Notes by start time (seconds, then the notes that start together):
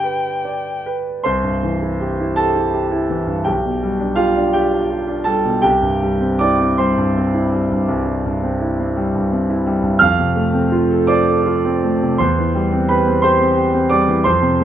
Already playing: D3 D4 G4 B4 G5
0.03 B4
0.45 D5
0.86 B4
1.24 C2 C5 C6
1.44 G2
1.63 E3
1.82 E4
2.01 G4
2.20 E4
2.36 G4 A4 A5
2.56 E4
2.74 G4
2.91 E4
3.10 E3
3.27 G2
3.44 B1 G4 G5
3.65 B2
3.83 G3
3.99 D4
4.16 F4 G4 F5
4.36 D4
4.53 G4 G5
4.73 D4
4.90 G4
5.08 D4
5.24 G3 A4 A5
5.44 B2
5.62 C2 G4 G5
5.82 G2
6.02 G3
6.21 C4
6.39 E4 D5 D6
6.60 C4
6.78 G3 C5 C6
6.98 G2
7.17 C4
7.34 E4
7.53 G3
7.71 G2
7.88 C2
8.06 G3
8.26 G2
8.43 C4
8.61 E4
8.80 C4
8.97 G3
9.15 G2
9.32 C4
9.50 E4
9.66 G3
9.83 G2
9.99 F2 F5 F6
10.19 C3
10.36 A3
10.54 C4
10.72 F4
10.90 A4
11.07 C5 D5 D6
11.28 A4
11.46 F4
11.65 C4
11.83 A3
12.02 C3
12.18 E2 C5 C6
12.38 E3
12.55 G3
12.72 C4
12.89 G4 B4 B5
13.08 C4
13.22 G4 C5 C6
13.41 C4
13.56 G4
13.74 C4
13.90 G3 D5 D6
14.08 E3
14.24 F2 C5 C6
14.42 C3
14.60 A3